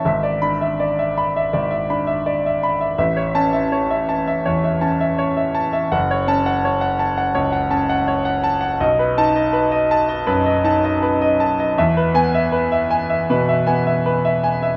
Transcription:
<<
  \new Staff \with { instrumentName = "Grand piano" } { \time 4/4 \key e \mixolydian \tempo 4 = 81 << { r8 b''8 r2. | r8 a''8 r2. | r8 a''8 r2. | r8 a''8 r2. |
r8 gis''8 r2. | } \\ { e''16 d''8 e''16 d''16 e''16 b''16 e''16 d''16 e''16 b''16 e''16 d''16 e''16 b''16 e''16 | e''16 cis''8 e''16 cis''16 e''16 a''16 e''16 cis''16 e''16 a''16 e''16 cis''16 e''16 a''16 e''16 | fis''16 cis''8 fis''16 cis''16 fis''16 a''16 fis''16 cis''16 fis''16 a''16 fis''16 cis''16 fis''16 a''16 fis''16 | dis''16 b'8 dis''16 b'16 dis''16 a''16 dis''16 b'16 dis''16 a''16 dis''16 b'16 dis''16 a''16 dis''16 |
e''16 b'8 e''16 b'16 e''16 gis''16 e''16 b'16 e''16 gis''16 e''16 b'16 e''16 gis''16 e''16 | } >> }
  \new Staff \with { instrumentName = "Grand piano" } { \clef bass \time 4/4 \key e \mixolydian gis,,8 d'4 r8 gis,,8 d'4 r8 | a,,8 cis'4 r8 e,8 cis'4 r8 | fis,,8 cis'4 r8 cis,8 cis'4 r8 | b,,8 dis'4 r8 fis,8 dis'4 r8 |
e,8 b4 r8 b,8 b4 r8 | }
>>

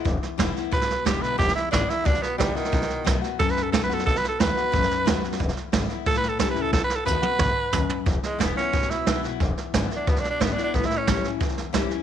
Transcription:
<<
  \new Staff \with { instrumentName = "Tenor saxophone" } { \time 4/4 \key e \mixolydian \tempo 4 = 180 r2 b'4 g'8 b'8 | g'8 e'8 d'8 e'8 d'8 b8 g8 dis8~ | dis4. r8 \tuplet 3/2 { a'8 b'8 a'8 a'8 b'8 a'8 } | \tuplet 3/2 { a'8 b'8 a'8 } b'2. |
r2 \tuplet 3/2 { a'8 b'8 a'8 a'8 b'8 a'8 } | \tuplet 3/2 { a'8 b'8 a'8 } b'2. | r8 gis8 b8 cis'4 e'4 r8 | r4 \tuplet 3/2 { r4 d'8 b8 d'8 d'8 b8 d'8 d'8 } |
\tuplet 3/2 { b8 e'8 cis'8~ } cis'8 r2 r8 | }
  \new Staff \with { instrumentName = "Steel-string acoustic guitar" } { \time 4/4 \key e \mixolydian << { r4 <d gis b e'>8 <b e'>8 r4 <d gis b e'>4 | r4 <d gis b e'>8 <b e'>8 r4 <d gis b e'>8 <b e'>8 | r4 <dis a b fis'>8 <b fis'>8 r4 <dis a b fis'>8 <b fis'>8 | r4 <dis a b fis'>8 <b fis'>8 r4 <dis a b fis'>8 <b fis'>8 |
r4 <d gis b e'>8 <b e'>8 r4 <e g cis' e'>8 <cis' e'>8 | r4 <dis a b fis'>8 <b fis'>8 r2 | r4 <d gis b e'>8 <b e'>8 r4 <d gis b e'>8 <b e'>8 | r4 <d gis b e'>8 <b e'>8 r4 <d gis b e'>8 <b e'>8 |
r4 <e g cis' e'>8 <cis' e'>8 r4 <e g cis' e'>8 <cis' e'>8 | } \\ { e,2 b,2 | e,2 b,2 | b,2 fis,2 | b,2 fis,2 |
e,2 a,2 | b,2 gis,4 fis,4 | e,2 b,2 | e,2 b,2 |
a,2 e,2 | } >> }
  \new Staff \with { instrumentName = "Upright bass" } { \clef bass \time 4/4 \key e \mixolydian e,,8 r8 e,,8 r8 gis,,8 d,8 e,,8 b,,8 | e,,8 r8 gis,,8 r8 d,8 r8 ais,,8 r8 | b,,8 r8 b,,8 r8 dis,8 a,,8 b,,8 fis,8 | b,,8 r8 dis,8 r8 a,,8 r8 dis,8 r8 |
e,,8 r8 gis,,8 r8 a,,8 g,,8 a,,8 cis,8 | b,,8 r8 dis,8 r8 a,,8 r8 dis,8 r8 | e,,8 r8 e,,8 r8 gis,,8 d,8 e,,8 b,,8 | e,,8 r8 gis,,8 r8 d,8 r8 gis,,8 r8 |
a,,8 r8 a,,8 r8 cis,8 g,,8 a,,8 e,8 | }
  \new DrumStaff \with { instrumentName = "Drums" } \drummode { \time 4/4 <bd sn>8 sn8 <hhp bd sn>8 sn8 <bd sn>16 sn16 sn8 <hhp bd sn>8 sn8 | <bd sn>16 sn16 sn8 <hhp bd sn>8 sn8 <bd sn>16 sn16 sn8 <hhp bd sn>8 sn16 sn16 | <bd sn>16 sn16 sn8 <hhp bd sn>8 sn8 <bd sn>16 sn16 sn8 <hhp bd sn>8 sn16 sn16 | <bd sn>16 sn16 sn8 <hhp bd sn>8 sn8 <bd sn>16 sn16 sn8 <hhp bd sn>8 sn16 sn16 |
<bd sn>16 sn16 sn8 <hhp bd sn>8 sn8 <bd sn>16 sn16 sn8 <hhp bd sn>8 sn8 | <bd sn>8 sn8 <hhp bd>8 tommh8 <bd toml>4 <hhp bd tomfh>8 tomfh8 | <bd sn>8 sn8 <hhp bd sn>8 sn8 <bd sn>16 sn16 sn8 <hhp bd sn>8 sn8 | <bd sn>8 sn8 <hhp bd sn>8 sn8 <bd sn>16 sn16 sn8 <hhp bd sn>8 sn8 |
<bd sn>16 sn16 sn8 <hhp bd sn>8 sn8 <bd sn>16 sn16 sn8 <hhp bd sn>8 sn8 | }
>>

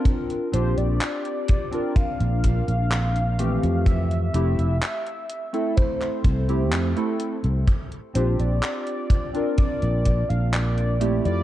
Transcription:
<<
  \new Staff \with { instrumentName = "Soft synth lead" } { \time 4/4 \key bes \lydian \tempo 4 = 63 r8 c''16 d''4~ d''16 f''2 | e''2 c''4. r8 | r8 c''16 d''4~ d''16 d''8. f''16 d''8. d''16 | }
  \new Staff \with { instrumentName = "Synth keys" } { \time 4/4 \key bes \lydian <c' d' f' bes'>8 <c' d' f' g'>4~ <c' d' f' g'>16 <c' d' f' bes'>4.~ <c' d' f' bes'>16 <e a c' g'>8~ | <e a c' g'>8 <a c' e' g'>8 r8. <a c' e' a'>4 <a c' e' g'>8 <a c' e' a'>8 r16 | r8 <c' d' f' g'>4~ <c' d' f' g'>16 <c' d' f' bes'>4.~ <c' d' f' bes'>16 <a c' e' g'>8 | }
  \new Staff \with { instrumentName = "Fretless electric bass" } { \clef bass \time 4/4 \key bes \lydian r8 bes,,16 bes,,16 r4 r16 bes,,8 bes,,4 f,16~ | f,8 f,,16 f,,16 r4. c,8 f,16 r8 c,16 | r8 bes,,16 bes,,16 r4 r16 bes,,8 bes,,4 f,16 | }
  \new DrumStaff \with { instrumentName = "Drums" } \drummode { \time 4/4 <hh bd>16 hh16 hh16 hh16 <hc hh>16 hh16 <hh bd>16 hh16 <hh bd>16 hh16 <hh bd>16 hh16 <hc hh>16 hh16 hh16 hh16 | <hh bd>16 hh16 hh16 hh16 <hc hh>16 hh16 hh16 hh16 <hh bd>16 <hc hh>16 <hh bd>16 hh16 <hc hh>16 hh16 hh16 hh16 | <hh bd>16 hh16 hh16 hh16 <hc hh>16 hh16 <hh bd>16 hh16 <hh bd>16 hh16 <hh bd>16 hh16 <hc hh>16 hh16 hh16 hh16 | }
>>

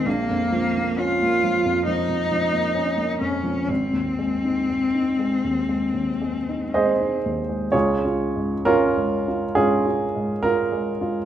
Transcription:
<<
  \new Staff \with { instrumentName = "Cello" } { \time 4/4 \key des \major \tempo 4 = 65 bes4 f'4 ees'4. des'8 | c'2.~ c'8 r8 | r1 | }
  \new Staff \with { instrumentName = "Grand piano" } { \time 4/4 \key des \major r1 | r2. <aes' c'' ees''>4 | <f' aes' des''>4 <des' f' bes'>4 <des' f' aes'>4 bes'4 | }
  \new Staff \with { instrumentName = "Grand piano" } { \clef bass \time 4/4 \key des \major bes,,16 f,16 f16 bes16 des'16 bes16 f16 f,16 f16 f,16 f16 bes16 des'16 bes16 f,16 f16 | aes,,16 ees,16 aes16 ees'16 aes16 ees'16 aes16 ees,16 aes16 ees,16 aes16 ees'16 aes16 ees'16 ees,16 aes16 | \tuplet 3/2 { des,8 f'8 aes,8~ aes,8 aes8 f'8 aes,8 f'8 aes,8 f'8 aes8 f'8 } | }
>>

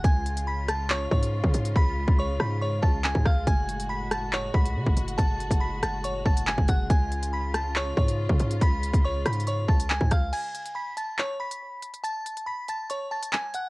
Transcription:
<<
  \new Staff \with { instrumentName = "Synth bell" } { \time 4/4 \key fis \minor \tempo 4 = 140 <gis'' gis'''>4 <b'' b'''>8 <a'' a'''>8 <cis'' cis'''>8 <cis'' cis'''>4. | <b'' b'''>4 <cis'' cis'''>8 <b'' b'''>8 <cis'' cis'''>8 <a'' a'''>8 <gis'' gis'''>8 <eis'' eis'''>8 | <gis'' gis'''>4 <b'' b'''>8 <a'' a'''>8 <cis'' cis'''>8 <b'' b'''>4. | <a'' a'''>4 <b'' b'''>8 <a'' a'''>8 <cis'' cis'''>8 <a'' a'''>8 <gis'' gis'''>8 <fis'' fis'''>8 |
<gis'' gis'''>4 <b'' b'''>8 <a'' a'''>8 <cis'' cis'''>8 <cis'' cis'''>4. | <b'' b'''>4 <cis'' cis'''>8 <b'' b'''>8 <cis'' cis'''>8 <a'' a'''>8 <gis'' gis'''>8 <eis'' eis'''>8 | <gis'' gis'''>4 <b'' b'''>8 <a'' a'''>8 <cis'' cis'''>8 <b'' b'''>4. | <a'' a'''>4 <b'' b'''>8 <a'' a'''>8 <cis'' cis'''>8 <a'' a'''>8 <gis'' gis'''>8 <fis'' fis'''>8 | }
  \new Staff \with { instrumentName = "String section" } { \clef bass \time 4/4 \key fis \minor << { <cis eis'>1~ | <cis eis'>1 | <a, fis'>1~ | <a, fis'>1 |
<cis eis'>1~ | <cis eis'>1 | r1 | r1 | } \\ { gis1~ | gis1~ | gis1~ | gis1~ |
gis1~ | gis1 | r1 | r1 | } >> }
  \new Staff \with { instrumentName = "808-style bass" } { \clef bass \time 4/4 \key fis \minor cis,2~ cis,8 gis,8. cis16 gis,8 | cis,8. cis,8. gis,4 cis,8. gis,16 cis,8 | fis,,2~ fis,,8 cis,8 cis16 fis,,16 fis,,8 | fis,,8. fis,,8. fis,,4 fis,,8. fis,,16 fis,,8 |
cis,2~ cis,8 gis,8. cis16 gis,8 | cis,8. cis,8. gis,4 cis,8. gis,16 cis,8 | r1 | r1 | }
  \new DrumStaff \with { instrumentName = "Drums" } \drummode { \time 4/4 <hh bd>8 hh16 hh16 r8 <hh ss>8 hc8 bd16 hh16 r16 bd16 hh16 hh16 | bd8. bd16 r8 ss8 r8 bd8 hc16 bd16 <bd ss>8 | <hh bd>8 hh16 hh16 r8 <hh ss>8 hc8 bd16 hh16 r16 bd16 hh16 hh16 | <hh bd>8 hh16 <hh bd>16 r8 <hh ss>8 hh8 bd16 hh16 hc16 bd16 <hh bd>8 |
<hh bd>8 hh16 hh16 r8 <hh ss>8 hc8 bd16 hh16 r16 bd16 hh16 hh16 | <hh bd>8 hh16 <hh bd>16 \tuplet 3/2 { r16 r16 r16 <hh ss>16 hh16 hh16 } hh8 bd16 hh16 hc16 bd16 <hh bd ss>8 | <cymc hh>8 hh16 hh16 r8 hh8 hc8. hh16 r8 hh16 hh16 | hh8 hh16 hh16 r8 hh8 hh8. hh16 hc8 hh8 | }
>>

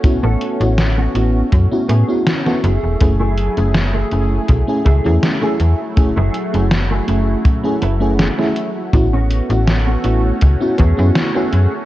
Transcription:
<<
  \new Staff \with { instrumentName = "Clean electric guitar" } { \time 4/4 \key a \major \tempo 4 = 81 r16 <b cis' a'>8 r8 <b cis' fis'>8. r8 <b cis' gis'>8 r16 <b cis' a'>16 <a e' gis'>8 | r16 <a e' gis'>8 r8 <a e' gis'>8. r8 <a e' gis'>8 r16 <a e' gis'>8 r16 | r16 <a e' gis'>8 r8 <a e' gis'>8. r8 <a e' b'>8 r16 <a e' fis'>8 r16 | r16 <b cis' fis'>8 r8 <b cis' fis'>8. r8 <b cis' gis'>8 r16 <b cis' gis'>8 r16 | }
  \new Staff \with { instrumentName = "FM electric piano" } { \time 4/4 \key a \major <b cis' e' fis'>16 r8 <b cis' e' fis'>16 r8 <b cis' e' fis'>8. <b cis' e' fis'>16 r16 <b cis' e' fis'>8 <b cis' e' fis'>16 r8 | <a cis' e' gis'>16 r8 <a cis' e' gis'>16 r8 <a cis' e' gis'>8. <a cis' e' gis'>16 r16 <a cis' e' gis'>8 <a cis' e' gis'>16 r8 | <a cis' e' gis'>16 r8 <a cis' e' gis'>16 r8 <a cis' e' gis'>8. <a cis' e' gis'>16 r16 <a cis' e' gis'>8 <a cis' e' gis'>16 r8 | <b cis' e' fis'>16 r8 <b cis' e' fis'>16 r8 <b cis' e' fis'>8. <b cis' e' fis'>16 r16 <b cis' e' fis'>8 <b cis' e' fis'>16 r8 | }
  \new Staff \with { instrumentName = "Analog synth pad" } { \time 4/4 \key a \major << { cis'2.~ cis'8 gis'8~ | gis'2.~ gis'8 fis'8~ | fis'1 | cis'1 | } \\ { <a fis'>2.~ <a fis'>8 <fis a e'>8~ | <fis a e'>1~ | <fis a e'>1 | a1 | } >> }
  \new Staff \with { instrumentName = "FM bass" } { \clef bass \time 4/4 \key a \major a,,16 a,,16 r16 a,,8. a,,16 r16 fis,16 r16 a,16 r8. fis,,16 e,,16 | fis,,8. fis,,8. fis,,16 r16 b,,16 r16 cis,16 e,16 r8 e,16 r16 | fis,,16 fis,,16 r16 fis,,8. fis,,16 r8. fis,,8. r8. | a,,8. a,,8. a,,16 r16 cis,16 r16 e,16 fis,16 r8 fis,16 r16 | }
  \new DrumStaff \with { instrumentName = "Drums" } \drummode { \time 4/4 <hh bd>8 hh16 hh16 <hh sn>8 hh8 <hh bd>8 hh8 <hh sn>16 sn16 hh8 | <hh bd>8 hh16 hh16 <hh sn>8 hh8 <hh bd>8 <hh bd>8 <hh sn>8 hh8 | <hh bd>8 hh16 hh16 <hh sn>8 hh8 <hh bd>8 hh8 <hh sn>16 sn16 hh8 | <hh bd>8 hh16 hh16 <hh sn>8 hh8 <hh bd>8 <hh bd>8 <hh sn>8 hh8 | }
>>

